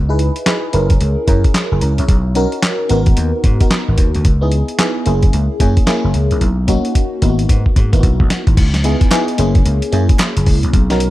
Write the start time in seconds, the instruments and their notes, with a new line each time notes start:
Already playing: slap bass C#2
0.09 fm electric piano D#4 E4 G#4 B4
0.19 closed hi-hat
0.36 closed hi-hat
0.46 fm electric piano D#4 E4 G#4 B4, snare, clap, closed hi-hat
0.73 slap bass F#1, fm electric piano C#4 E4 G#4 A#4, closed hi-hat
0.90 kick, closed hi-hat
1.01 slap bass C#2, closed hi-hat
1.27 slap bass F#2, fm electric piano C#4 E4 G#4 A#4, kick, closed hi-hat
1.44 kick, closed hi-hat
1.54 snare, clap, closed hi-hat
1.72 slap bass F#1, fm electric piano G#4
1.81 slap bass C#2, fm electric piano C#4 A#4, closed hi-hat
1.98 slap bass C2, fm electric piano E4 C#5, closed hi-hat
2.08 slap bass B1, kick, closed hi-hat
2.35 fm electric piano C#4 D#4 F#4 A#4, closed hi-hat
2.52 closed hi-hat
2.62 snare, clap, closed hi-hat
2.89 slap bass G#1, fm electric piano B3 D#4 F#4 A#4, closed hi-hat
3.06 kick, closed hi-hat
3.17 slap bass D#2, closed hi-hat
3.44 slap bass G#2, kick, closed hi-hat
3.60 fm electric piano B3 D#4 F#4 A#4, kick, closed hi-hat
3.71 snare, clap, closed hi-hat
3.88 slap bass G#1
3.98 slap bass D#2, kick, closed hi-hat
4.15 slap bass D2, closed hi-hat
4.25 slap bass C#2, kick, closed hi-hat
4.41 fm electric piano B3 D#4 E4 G#4
4.52 closed hi-hat
4.68 closed hi-hat
4.79 fm electric piano B3 D#4 E4 G#4, snare, clap, closed hi-hat
5.06 slap bass F#1, fm electric piano A#3 C#4 E4 G#4, closed hi-hat
5.23 kick, closed hi-hat
5.33 slap bass C#2, closed hi-hat
5.60 slap bass F#2, fm electric piano A#3 C#4 E4 G#4, kick, closed hi-hat
5.77 kick, closed hi-hat
5.86 fm electric piano A#3 C#4 E4 G#4, snare, clap, closed hi-hat
6.04 slap bass F#1
6.14 slap bass C#2, closed hi-hat
6.31 slap bass C2, closed hi-hat
6.41 slap bass B1, kick, closed hi-hat
6.68 fm electric piano A#3 C#4 D#4 F#4, kick, closed hi-hat
6.85 closed hi-hat
6.95 kick, closed hi-hat
7.22 slap bass G#1, fm electric piano A#3 B3 D#4 E4, kick, closed hi-hat
7.29 fm electric piano F#4
7.39 closed hi-hat
7.49 slap bass G#2, kick, closed hi-hat
7.66 kick
7.76 slap bass G#2, kick, closed hi-hat
7.92 slap bass G#1, fm electric piano A#3 B3 D#4 E4, kick, closed hi-hat
8.00 slap bass B1, fm electric piano F#4, kick, closed hi-hat
8.20 slap bass B1, kick
8.30 snare, closed hi-hat
8.47 slap bass G#1, kick, closed hi-hat
8.57 slap bass C#2, kick, closed hi-hat, crash
8.74 snare, closed hi-hat
8.84 fm electric piano B3 D#4 E4 G#4, closed hi-hat
9.01 kick, closed hi-hat
9.11 fm electric piano B3 D#4 E4 G#4, snare, clap, closed hi-hat
9.28 closed hi-hat
9.38 slap bass F#1, fm electric piano A#3 C#4 E4 G#4, closed hi-hat
9.55 kick, closed hi-hat
9.66 slap bass C#2, closed hi-hat
9.82 closed hi-hat
9.92 slap bass F#2, fm electric piano A#3 C#4 E4 G#4, closed hi-hat
10.09 kick, closed hi-hat
10.19 snare, clap, closed hi-hat
10.37 slap bass F#1, closed hi-hat
10.46 slap bass C#2, kick, open hi-hat
10.63 slap bass C2, closed hi-hat
10.74 slap bass B1, kick, closed hi-hat
10.90 fm electric piano C#4 D#4 F#4 A#4, snare, closed hi-hat
11.00 closed hi-hat